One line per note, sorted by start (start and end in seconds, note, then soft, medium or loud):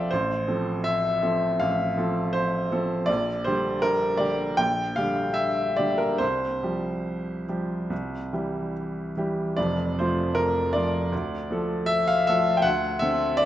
0.00 0.12 C2 soft
0.00 0.12 F3 soft
0.00 0.12 C4 soft
0.00 0.12 A4 soft
0.00 0.11 C5 medium
0.00 0.13 D5 medium
0.00 0.12 E5 medium
0.00 0.12 F5 medium
0.00 0.12 G5 medium
0.00 0.12 A5 medium
0.11 0.47 A1 medium
0.11 0.84 C5 medium
0.48 1.18 F3 soft
0.48 1.19 C4 soft
0.48 1.19 A4 soft
0.84 1.60 E5 medium
1.22 1.56 F3 soft
1.22 1.56 C4 soft
1.22 1.56 A4 soft
1.60 1.97 A1 medium
1.60 2.35 F5 medium
1.97 2.67 F3 soft
1.97 2.68 C4 soft
1.97 2.68 A4 soft
2.33 3.07 C5 medium
2.71 3.05 F3 soft
2.71 3.05 C4 soft
2.71 3.05 A4 medium
3.06 3.44 A#1 medium
3.06 3.44 D5 medium
3.45 4.17 D3 soft
3.45 4.17 G3 soft
3.45 4.17 G4 soft
3.45 3.82 C5 medium
3.82 4.20 A#4 medium
4.17 4.54 D3 soft
4.17 4.54 G3 soft
4.17 4.55 G4 soft
4.17 4.57 D5 medium
4.57 4.96 A#1 medium
4.57 4.97 G5 loud
4.96 5.74 D3 soft
4.96 5.74 G3 soft
4.96 5.74 G4 soft
4.96 5.36 F5 medium
5.34 5.76 E5 medium
5.77 6.17 D3 soft
5.77 6.17 G3 soft
5.77 6.17 G4 soft
5.77 5.98 D5 medium
5.98 6.20 A#4 medium
6.18 6.62 C2 medium
6.18 8.73 C5 medium
6.62 7.44 F3 soft
6.62 7.44 G3 soft
6.62 7.45 G4 soft
7.49 7.87 F3 soft
7.49 7.87 G3 soft
7.49 7.87 G4 soft
7.90 8.31 C2 medium
8.33 9.12 E3 soft
8.33 9.12 G3 soft
8.33 9.12 G4 soft
9.17 9.53 E3 soft
9.17 9.54 G3 soft
9.17 9.54 G4 soft
9.57 9.96 F1 medium
9.57 9.96 F2 medium
9.57 9.97 D5 medium
9.99 10.71 F3 soft
9.99 10.72 A3 soft
9.99 10.72 F4 soft
9.99 10.37 C5 medium
10.35 10.73 A#4 medium
10.73 11.09 F3 soft
10.73 11.09 A3 soft
10.73 11.09 F4 soft
10.73 11.88 D5 medium
11.12 11.49 D2 medium
11.51 12.23 F3 soft
11.51 12.24 A3 soft
11.51 12.24 A4 medium
11.86 12.07 E5 loud
12.08 12.27 F5 loud
12.27 12.62 F3 soft
12.27 12.62 A3 soft
12.27 12.62 A4 medium
12.27 12.58 E5 loud
12.57 12.64 G5 medium
12.62 13.00 D2 medium
12.62 13.01 F#5 loud
12.99 13.45 D3 medium
12.99 13.45 C4 medium
12.99 13.45 A4 medium
12.99 13.38 E5 medium
13.37 13.45 D5 loud